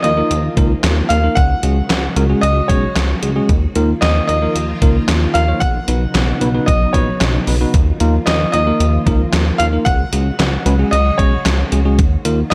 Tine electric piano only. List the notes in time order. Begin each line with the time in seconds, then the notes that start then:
0.04 A#3 D#4 F4 A#4
0.17 A#3 D#4 F4 A#4
0.57 A#3 D#4 F4 A#4
1.10 A#3 D#4 F4 A#4
1.24 A#3 D#4 F4 A#4
1.63 G#3 C#4 F#4 G#4
2.16 G#3 C#4 F#4 A#4
2.30 G#3 C#4 F#4 G#4
2.70 G#3 C#4 F#4 G#4
3.23 G#3 C#4 F#4 G#4
3.36 G#3 C#4 F#4 G#4
3.76 A#3 D#4 F4 A#4
4.29 A#3 D#4 F4 A#4
4.42 A#3 D#4 F4 A#4
4.82 A#3 D#4 F4 A#4
5.35 A#3 D#4 F4 A#4
5.48 A#3 D#4 F4 C#5
5.88 B3 D#4 F#4 B4
6.41 B3 D#4 F#4 B4
6.55 B3 D#4 F#4 B4
6.94 B3 D#4 F#4 B4
7.48 B3 D#4 F#4 B4
7.61 B3 D#4 F#4 B4
8.01 A#3 D#4 F4 A#4
8.54 A#3 D#4 F4 A#4
8.67 A#3 D#4 F4 A#4
9.07 A#3 D#4 F4 A#4
9.60 A#3 D#4 F4 A#4
9.73 A#3 D#4 F4 A#4
10.13 G#3 C#4 F#4 G#4
10.66 G#3 C#4 F#4 B4
10.79 G#3 C#4 F#4 G#4
11.19 G#3 C#4 F#4 G#4
11.72 G#3 C#4 F#4 G#4
11.85 G#3 C#4 F#4 G#4
12.25 A#3 D#4 F4 A#4